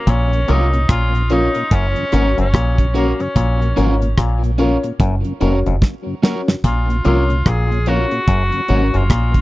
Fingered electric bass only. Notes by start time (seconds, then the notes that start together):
0.07 A#1
0.49 C2
0.90 A#1
1.72 F#1
2.13 G#1
2.38 F#1
2.54 A#1
3.36 A#1
3.78 G#1
4.18 A#1
5.00 F#1
5.42 F1
5.67 F1
6.64 A#1
7.06 C2
7.46 A#1
8.28 F#1
8.70 G#1
8.95 F#1
9.10 A#1